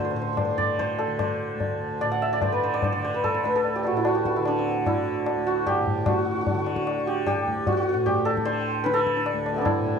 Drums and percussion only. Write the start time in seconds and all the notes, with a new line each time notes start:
0.37 tabla na, tabla ge
0.59 tabla ge
0.79 tabla tin, tabla ge
0.99 tabla na
1.19 tabla na, tabla ge
1.60 tabla tin, tabla ge
2.01 tabla na
2.42 tabla na, tabla ge
2.82 tabla tin, tabla ge
3.24 tabla tin, tabla ge
3.44 tabla na
3.64 tabla tin
3.85 tabla na
4.05 tabla na
4.25 tabla ke
4.46 tabla na
4.86 tabla na, tabla ge
5.26 tabla na
5.67 tabla na, tabla ge
5.87 tabla ge
6.06 tabla na, tabla ge
6.47 tabla tin, tabla ge
6.67 tabla na
6.76 tabla ke
6.87 tabla na
7.27 tabla na, tabla ge
7.47 tabla ge
7.67 tabla tin, tabla ge
8.06 tabla tin, tabla ge
8.27 tabla na
8.37 tabla ke
8.46 tabla tin
8.86 tabla te
8.97 tabla te
9.07 tabla ke
9.17 tabla te
9.26 tabla na
9.46 tabla na
9.66 tabla na, tabla ge
9.86 tabla ge